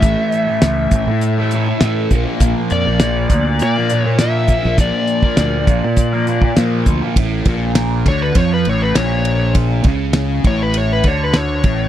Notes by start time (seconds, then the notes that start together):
Already playing: A1 E5
0.02 A2 E3 A3, kick, closed hi-hat
0.32 closed hi-hat
0.47 E3 A3
0.62 C#2 A2 E3 A3, snare, closed hi-hat
0.91 A1 A2 E3, kick, closed hi-hat
0.96 A3
1.07 A2, muted distorted electric guitar stroke
1.21 closed hi-hat
1.38 E3 A3
1.51 A2 E3, closed hi-hat
1.55 A3
1.69 muted distorted electric guitar stroke
1.81 A2 E3 A3, snare, closed hi-hat
2.11 A#1 A#2 F3, kick, closed hi-hat
2.15 A#3
2.27 F3 A#3
2.40 A#1 A#2 F3 A#3, kick, closed hi-hat
2.70 F2 D5, closed hi-hat
2.87 A#1 F3 A#3
3.00 A#2 F3 A#3, snare, closed hi-hat
3.30 D2 A#2 F3 A#3, kick, closed hi-hat
3.46 muted distorted electric guitar stroke
3.59 A#2 D5, closed hi-hat
3.76 F3 A#3
3.90 A#2 F3, closed hi-hat
3.94 A#3
4.02 C#5, muted distorted electric guitar stroke
4.19 A#2 F3 A#3 E5, snare, closed hi-hat
4.48 kick, closed hi-hat
4.63 A#1 A#3, snare
4.68 F3
4.78 A#2 F3 A#3 D5, kick, closed hi-hat
5.07 closed hi-hat
5.23 F3 A#3, kick
5.37 D2 A#2 F3, snare, closed hi-hat
5.41 A#3
5.67 A#1 A#2 F3 A#3, kick, closed hi-hat
5.84 A#2, muted distorted electric guitar stroke
5.97 kick, closed hi-hat
6.13 F3 A#3
6.26 A#2 F3 A#3, closed hi-hat
6.42 muted distorted electric guitar stroke, kick
6.57 A#2 F3 A#3, snare, closed hi-hat
6.86 D2, kick, closed hi-hat
7.02 F3 A#3
7.16 A1 A2, kick, ride
7.45 A#1 A#2, kick, ride
7.75 snare, ride
8.06 D2 D3 C#5, kick, snare, ride
8.22 B4
8.35 F2 F3 C#5, kick, ride
8.54 B4
8.65 A1 A2, ride
8.69 C#5
8.82 B4
8.95 A#1 A#2 C#5, snare, ride
9.25 ride
9.55 kick, ride
9.84 C#2 C#3, kick, ride
10.13 snare, ride
10.44 A1 A2 C#5, kick, ride
10.63 B4
10.74 C#5, ride
10.93 B4
11.04 D2 D3, kick, ride
11.08 C#5
11.24 B4
11.34 C#5, snare, ride
11.64 A1 A2, kick, ride